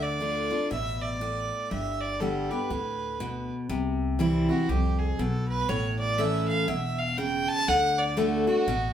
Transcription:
Already playing: upright bass D2, steel-string acoustic guitar D3
0.02 fiddle D5
0.20 steel-string acoustic guitar D3 A3 D4 F4
0.51 steel-string acoustic guitar D4 F4
0.71 upright bass A1, steel-string acoustic guitar B2, fiddle E5
1.02 fiddle D5
1.21 steel-string acoustic guitar A2
1.71 upright bass G1, steel-string acoustic guitar G2, fiddle E5
2.00 fiddle D5
2.20 steel-string acoustic guitar D3 G3 B3 G4, fiddle A4
2.50 steel-string acoustic guitar B3 G4, fiddle B4
2.70 upright bass D2, steel-string acoustic guitar A2
3.20 steel-string acoustic guitar B2
3.69 upright bass C2, steel-string acoustic guitar C3
4.19 steel-string acoustic guitar E3 G3 C4 E4
4.49 steel-string acoustic guitar C4 E4, fiddle F#4
4.69 upright bass C2, steel-string acoustic guitar F2, fiddle G4
4.98 fiddle G#4
5.19 upright bass B1, steel-string acoustic guitar B2, fiddle A4
5.48 fiddle B4
5.69 upright bass A1, steel-string acoustic guitar A2, fiddle C#5
5.99 fiddle D5
6.18 steel-string acoustic guitar E3 A3 C#4 E4, fiddle E5
6.48 fiddle F5
6.68 upright bass E1, steel-string acoustic guitar B2, fiddle E5
6.99 fiddle F5
7.17 steel-string acoustic guitar C#3, fiddle G5
7.48 fiddle A5
7.68 upright bass D2, steel-string acoustic guitar D3, fiddle F#5
7.98 fiddle D5
8.17 steel-string acoustic guitar D3 A3 D4 F#4, fiddle A4
8.47 steel-string acoustic guitar D4 F#4, fiddle F#4
8.67 upright bass A1, steel-string acoustic guitar B2

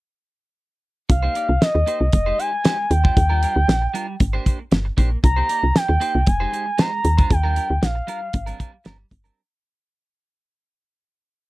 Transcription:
1.09 fm bass C2, soft synth lead F5, muted clean electric guitar stroke, kick, closed hi-hat
1.23 clean electric guitar A#3 D#4 G4 C5
1.35 clean electric guitar A#3 D#4 G4 D5, closed hi-hat
1.49 fm bass C2, muted clean electric guitar stroke
1.61 soft synth lead D#5, muted clean electric guitar stroke, snare, closed hi-hat
1.74 fm bass D#2, muted clean electric guitar stroke
1.86 clean electric guitar A#3 D#4 G4 C5, closed hi-hat
2.00 fm bass C2, muted clean electric guitar stroke
2.13 fm bass F1, soft synth lead D#5, muted clean electric guitar stroke, kick, closed hi-hat
2.26 clean electric guitar G#3 D#4 G4 C5
2.38 clean electric guitar G#3 D#4 G4 C5, soft synth lead G#5, closed hi-hat
2.52 muted clean electric guitar stroke
2.64 clean electric guitar G#3 D#4 G4 C5, snare, closed hi-hat
2.78 muted clean electric guitar stroke
2.90 fm bass D#2, soft synth lead G5, muted clean electric guitar stroke, closed hi-hat
3.04 clean electric guitar G3 D4 F4 C5, kick
3.16 fm bass D#2, muted clean electric guitar stroke, kick, closed hi-hat
3.29 clean electric guitar G3 D4 F4 A#4
3.42 clean electric guitar G3 D4 F4 A#4, closed hi-hat
3.56 fm bass D2, muted clean electric guitar stroke
3.68 fm bass A#1, muted clean electric guitar stroke, snare, closed hi-hat
3.82 muted clean electric guitar stroke
3.94 clean electric guitar G3 D4 F4 A#4, closed hi-hat
4.07 muted clean electric guitar stroke
4.20 fm bass G#1, muted clean electric guitar stroke, kick, closed hi-hat
4.33 clean electric guitar A#3 D4 G4 C5
4.45 clean electric guitar A#3 D4 G4 C5, kick, closed hi-hat
4.59 muted clean electric guitar stroke
4.71 fm bass G1, muted clean electric guitar stroke, snare, closed hi-hat
4.85 muted clean electric guitar stroke
4.97 fm bass A#1, clean electric guitar A#3 D4 G4 C5, kick, closed hi-hat
5.11 muted clean electric guitar stroke
5.23 fm bass C2, soft synth lead A#5, muted clean electric guitar stroke, kick, closed hi-hat
5.36 clean electric guitar A#3 D#4 G4 C5
5.49 clean electric guitar A#3 D#4 G4 D5, closed hi-hat
5.63 fm bass C2, muted clean electric guitar stroke
5.75 soft synth lead G5, muted clean electric guitar stroke, snare, closed hi-hat
5.89 fm bass D#2, muted clean electric guitar stroke
6.00 clean electric guitar A#3 D#4 G4 C5, closed hi-hat
6.14 fm bass C2, muted clean electric guitar stroke
6.26 fm bass F1, soft synth lead G#5, muted clean electric guitar stroke, kick, closed hi-hat
6.40 clean electric guitar G#3 D#4 G4 C5
6.52 clean electric guitar G#3 D#4 G4 C5, closed hi-hat
6.66 muted clean electric guitar stroke
6.78 clean electric guitar G#3 D#4 G4 C5, soft synth lead A#5, snare, closed hi-hat
6.92 muted clean electric guitar stroke
7.04 fm bass D#2, muted clean electric guitar stroke, closed hi-hat
7.18 clean electric guitar G3 D4 F4 C5, kick, closed hi-hat
7.30 fm bass D#2, soft synth lead G5, muted clean electric guitar stroke, kick, closed hi-hat
7.43 clean electric guitar G3 D4 F4 A#4
7.55 clean electric guitar G3 D4 F4 A#4, closed hi-hat
7.69 fm bass D2, muted clean electric guitar stroke
7.82 fm bass A#1, soft synth lead F5, muted clean electric guitar stroke, snare, closed hi-hat
7.95 muted clean electric guitar stroke
8.07 clean electric guitar G3 D4 F4 A#4, closed hi-hat
8.21 muted clean electric guitar stroke
8.33 fm bass G#1, muted clean electric guitar stroke, kick, closed hi-hat
8.46 clean electric guitar G3 C4 D4 A#4, closed hi-hat
8.59 clean electric guitar G3 C4 D4 A#4, kick, closed hi-hat
8.84 fm bass G1, clean electric guitar G3 C4 D4 A#4, snare, closed hi-hat
9.11 fm bass G1, muted clean electric guitar stroke, kick, closed hi-hat
9.24 clean electric guitar G3 C4 D4 A#4, closed hi-hat

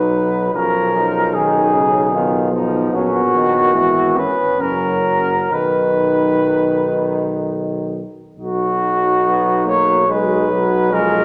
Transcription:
Already playing: tuba B1, trombone F#3, euphonium D#4, flugelhorn D#4, cornet B4
0.54 tuba B1, trombone F3, flugelhorn C#4, euphonium C#4, cornet A#4
0.95 trombone F3, flugelhorn D#4
1.34 trombone D#3, cornet G#4
1.74 trombone C#3
2.13 trombone D#3, euphonium B3, flugelhorn F4
2.52 trombone F3, flugelhorn D#4
2.92 tuba A#1, trombone F#3, flugelhorn C#4, cornet F#4
3.34 trombone D#3
3.74 tuba G#1, trombone E3, euphonium B3, flugelhorn E4
4.17 flugelhorn B3, euphonium C#4, cornet B4
4.58 tuba F#1, trombone F#3, euphonium C#4, flugelhorn C#4, cornet A#4
5.50 tuba B1, trombone D#3, euphonium D#4, flugelhorn D#4, cornet B4
8.39 tuba B1, euphonium F#3, flugelhorn D#4, cornet F#4
9.25 trombone B3
9.65 trombone A#3, cornet C#5
10.08 euphonium F#3, trombone G#3, flugelhorn D#4, cornet B4
10.50 trombone F#3
10.90 euphonium F3, trombone G#3, flugelhorn C#4, cornet A#4

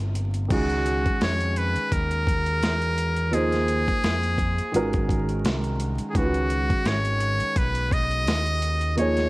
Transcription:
Already playing: picked electric bass G1, upright piano C3 F3 A#3 D#4 F4
0.15 closed hi-hat
0.34 closed hi-hat
0.48 picked electric bass C#2, upright piano D#3 G#3 C#4 F#4 G#4, kick, closed hi-hat, crash
0.53 muted trumpet F#4
0.70 closed hi-hat
0.86 closed hi-hat
1.06 muted picked electric bass stroke, kick, closed hi-hat
1.21 picked electric bass F2, muted trumpet C#5, snare, closed hi-hat
1.40 closed hi-hat
1.56 muted trumpet B4, closed hi-hat
1.76 muted picked electric bass stroke, closed hi-hat
1.92 picked electric bass D#2, muted trumpet A#4, kick, closed hi-hat
2.11 closed hi-hat
2.27 kick, closed hi-hat
2.46 closed hi-hat
2.63 picked electric bass E2, snare, closed hi-hat
2.82 closed hi-hat
2.98 closed hi-hat
3.16 closed hi-hat
3.31 picked electric bass D#2, upright piano F3 A#3 D#4 G#4 C5, muted trumpet G#4, closed hi-hat
3.52 snare, closed hi-hat
3.68 closed hi-hat
3.88 muted picked electric bass stroke, kick, closed hi-hat
4.04 picked electric bass F2, snare, closed hi-hat
4.23 closed hi-hat
4.38 kick, closed hi-hat
4.58 muted picked electric bass stroke, closed hi-hat
4.72 picked electric bass G#1, upright piano D#3 G#3 C#4 F#4, closed hi-hat
4.76 upright piano A#4
4.93 kick, closed hi-hat
5.09 kick, closed hi-hat
5.29 closed hi-hat
5.45 picked electric bass C2, snare, closed hi-hat
5.64 closed hi-hat
5.80 closed hi-hat
5.98 muted picked electric bass stroke, closed hi-hat
6.10 upright piano D#3 G#3, muted trumpet G#4
6.15 picked electric bass C#2, upright piano C#4 F4 B4, muted trumpet F#4, kick, closed hi-hat
6.22 upright piano F#4
6.34 closed hi-hat
6.50 closed hi-hat
6.70 muted picked electric bass stroke, kick, closed hi-hat
6.85 picked electric bass G#1, muted trumpet C#5, snare, closed hi-hat
7.05 closed hi-hat
7.21 closed hi-hat
7.40 muted picked electric bass stroke, closed hi-hat
7.56 picked electric bass B1, muted trumpet B4, kick, closed hi-hat
7.75 closed hi-hat
7.91 muted trumpet D#5, kick, closed hi-hat
8.11 closed hi-hat
8.27 picked electric bass D#2, snare, closed hi-hat
8.46 closed hi-hat
8.62 closed hi-hat
8.81 closed hi-hat
8.96 picked electric bass D#2, upright piano F3 A#3 D#4 G#4 C#5, muted trumpet C#5, closed hi-hat
9.17 snare, closed hi-hat

